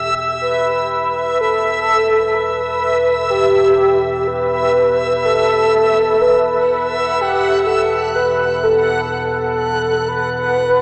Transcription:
Already playing: synth drone E2 B2, synth texture E5
0.41 soft synth lead B4
1.41 soft synth lead A4
2.34 soft synth lead B4
3.30 soft synth lead G4
4.28 soft synth lead B4
5.25 soft synth lead A4
6.21 soft synth lead B4
6.27 synth texture F#5
7.21 soft synth lead G4
7.66 soft synth lead A4
8.15 soft synth lead B4
8.63 soft synth lead A4
9.16 soft synth lead A4
10.08 soft synth lead B4

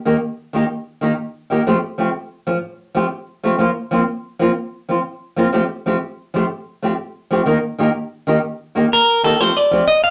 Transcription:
0.05 nylon-string guitar D#3 A#3 D#4 G4
0.53 nylon-string guitar D#3 A#3 D#4 G4
1.01 nylon-string guitar D#3 A#3 D#4 G4
1.50 nylon-string guitar D#3 A#3 D#4 G4
1.67 nylon-string guitar F3 A3 C4 G4
1.98 nylon-string guitar F3 A3 C4 G4
2.47 nylon-string guitar F3, muted nylon-string guitar stroke
2.95 nylon-string guitar F3 A3 C4 G4
3.44 nylon-string guitar F3 A3 C4 G4
3.59 nylon-string guitar F3 A#3 F4, muted nylon-string guitar stroke
3.91 nylon-string guitar F3 A#3 C4 F4
4.39 nylon-string guitar F3 A#3 C4 F4
4.89 nylon-string guitar F3 C4 F4, muted nylon-string guitar stroke
5.36 nylon-string guitar F3 A#3 C4 F4
5.52 nylon-string guitar F3 A3 C4 G4
5.86 nylon-string guitar F3 A3 C4 G4
6.34 nylon-string guitar F3 A3 C4 G4
6.83 nylon-string guitar F3 A3 C4 G4
7.31 nylon-string guitar F3 A3 C4 G4
7.46 nylon-string guitar D#3 A#3 D#4, muted nylon-string guitar stroke
7.78 nylon-string guitar D#3 A#3 D#4 G4
8.27 nylon-string guitar D#3 A#3 D#4 G4
8.75 nylon-string guitar D#3 A#3 D#4 G4
8.93 clean electric guitar A#4
9.23 nylon-string guitar D#3 A#3 D#4 G4, clean electric guitar A4
9.40 nylon-string guitar F3 A3 C4 G4, clean electric guitar C5
9.57 clean electric guitar D5
9.71 nylon-string guitar F3 A3 C4 G4
9.88 clean electric guitar D#5
10.04 clean electric guitar F5

